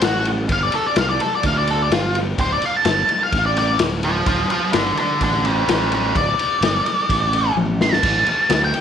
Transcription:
0.01 fingered electric bass A1, lead electric guitar F#4, snare, ride
0.25 ride
0.49 fingered electric bass G1, lead electric guitar F5, kick, ride
0.63 lead electric guitar D5
0.72 lead electric guitar A4, muted fingered electric bass stroke, ride
0.86 lead electric guitar D5
0.96 fingered electric bass C2, lead electric guitar F5, snare, ride
1.09 lead electric guitar D5, snare
1.20 lead electric guitar A4, muted fingered electric bass stroke, ride
1.35 lead electric guitar D5
1.43 fingered electric bass D2, lead electric guitar F5, kick, ride
1.58 lead electric guitar D5
1.67 lead electric guitar A4, ride
1.82 lead electric guitar D5
1.90 fingered electric bass G1, lead electric guitar F4, snare, ride
2.15 ride
2.38 fingered electric bass D1, lead electric guitar C5, kick, ride
2.53 lead electric guitar D5
2.61 muted fingered electric bass stroke, ride
2.65 lead electric guitar F5
2.76 lead electric guitar A5
2.85 fingered electric bass G1, snare, ride
2.98 snare
3.08 muted fingered electric bass stroke, ride
3.23 lead electric guitar F5
3.32 fingered electric bass A1, kick, ride
3.46 lead electric guitar D5
3.57 lead electric guitar D5, snare, ride
3.79 fingered electric bass D1, snare, ride
4.03 lead electric guitar C5 F5, ride
4.26 fingered electric bass D1, lead electric guitar C5 F5, kick, ride
4.50 lead electric guitar C5 F5, muted fingered electric bass stroke, ride
4.73 fingered electric bass G1, lead electric guitar A4 D5, snare, ride
4.97 lead electric guitar A4 D5, muted fingered electric bass stroke, ride
5.20 fingered electric bass A1, lead electric guitar A4 D5, kick, ride
5.45 lead electric guitar A4 C5, ride
5.68 fingered electric bass A1, lead electric guitar A4 C5, snare, ride
5.92 lead electric guitar A4 C5, ride
6.15 fingered electric bass D1, lead electric guitar D5, kick, ride
6.38 muted fingered electric bass stroke, ride
6.61 fingered electric bass G1, snare, ride
6.85 muted fingered electric bass stroke, ride
7.09 fingered electric bass A1, kick, ride
7.33 ride
7.55 fingered electric bass A1, high tom
7.81 lead electric guitar C6, snare
7.93 lead electric guitar A5, snare
8.03 fingered electric bass A1, kick, ride, crash
8.26 muted fingered electric bass stroke, ride
8.50 fingered electric bass D2, snare, ride
8.63 lead electric guitar G5, snare
8.74 muted fingered electric bass stroke, ride

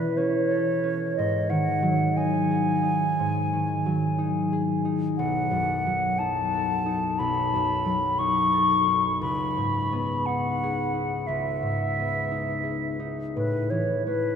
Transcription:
Already playing: harp B2 E3 B3 C#4 A4, flute B4
0.17 harp C#4, flute C#5
0.51 harp A4
0.83 harp C#4
1.17 harp G#2, flute D#5
1.50 harp D#3, flute F#5
1.82 harp F#3
2.17 harp D#4, flute G#5
2.51 harp G#4
2.83 harp D#4
3.19 harp G#2
3.53 harp D#3
3.86 harp F#3
4.18 harp D#4
4.53 harp G#4
4.85 harp D#4
5.17 harp B1, flute F#5
5.51 harp F#2
5.86 harp F#3
6.19 harp D#4, flute A5
6.54 harp A4
6.86 harp D#4
7.19 harp B1, flute B5
7.54 harp F#2
7.86 harp F#3
8.19 harp D#4, flute C#6
8.53 harp A4
8.87 harp D#4
9.21 harp C#2, flute B5
9.57 harp G#2
9.92 harp B3
10.26 harp D#4, flute F#5
10.63 harp G#4
10.94 harp D#4
11.27 harp C#2, flute E5
11.63 harp G#2
11.99 harp B3
12.31 harp D#4
12.64 harp G#4
13.00 harp D#4
13.36 harp A2, flute B4
13.70 harp E3, flute C#5
14.06 harp A3, flute B4

